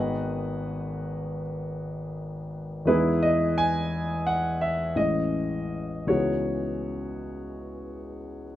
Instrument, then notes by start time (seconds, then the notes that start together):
grand piano
Already playing: G#1 D#3 G#3 B3 D#4 B4 D#5 F#5
2.85 E2 E3 G#3 B3 D#4 E4 G#4 B4
3.23 D#5
3.58 G#5
4.27 F#5
4.61 E5
4.95 A1 E3 G#3 C#4 D#5
6.07 C#2 E3 G#3 B3 D#4 F#4 G#4 C#5